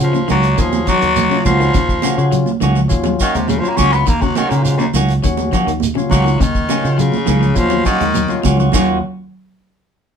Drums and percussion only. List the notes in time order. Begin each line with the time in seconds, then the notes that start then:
0.00 closed hi-hat, high conga
0.14 high conga, shekere
0.28 closed hi-hat, low conga, shekere
0.43 closed hi-hat, shekere
0.58 kick, closed hi-hat, high conga, shekere
0.73 high conga, shekere
0.87 kick, closed hi-hat, low conga, shekere
1.02 closed hi-hat, shekere
1.16 closed hi-hat, high conga, low conga, shekere
1.31 shekere
1.45 kick, closed hi-hat, high conga, low conga, shekere
1.61 shekere
1.74 kick, closed hi-hat, high conga, shekere
1.89 kick, shekere
2.02 closed hi-hat, high conga, shekere
2.18 shekere
2.32 closed hi-hat, shekere
2.46 high conga, shekere
2.60 closed hi-hat, low conga, shekere
2.76 shekere
2.89 kick, closed hi-hat, high conga, shekere
3.04 high conga, shekere
3.20 kick, closed hi-hat, shekere
3.35 closed hi-hat, shekere
3.48 closed hi-hat, high conga, shekere
3.65 shekere
3.77 kick, closed hi-hat, high conga, low conga, shekere
3.92 shekere
4.06 kick, closed hi-hat, high conga, shekere
4.22 kick, shekere
4.35 closed hi-hat, high conga, shekere
4.51 closed hi-hat, shekere
4.65 closed hi-hat, high conga, shekere
4.79 high conga, shekere
4.93 closed hi-hat, low conga, shekere
5.08 closed hi-hat, shekere
5.23 kick, closed hi-hat, high conga, shekere
5.37 high conga, shekere
5.52 kick, closed hi-hat, low conga, shekere
5.68 closed hi-hat, shekere
5.80 closed hi-hat, high conga, shekere
5.95 high conga, shekere
6.10 kick, closed hi-hat, high conga, low conga, shekere
6.27 shekere
6.40 kick, closed hi-hat, high conga, shekere
6.55 kick, shekere
6.69 closed hi-hat, high conga, shekere
6.85 shekere
6.99 closed hi-hat, high conga, shekere
7.12 high conga, shekere
7.26 closed hi-hat, low conga, shekere
7.42 shekere
7.56 kick, closed hi-hat, high conga, shekere
7.70 high conga, shekere
7.85 kick, closed hi-hat, low conga, shekere
8.00 closed hi-hat, shekere
8.14 closed hi-hat, high conga, shekere
8.28 high conga, shekere
8.43 kick, closed hi-hat, high conga, shekere
8.57 low conga, shekere
8.72 kick, crash, low conga, shekere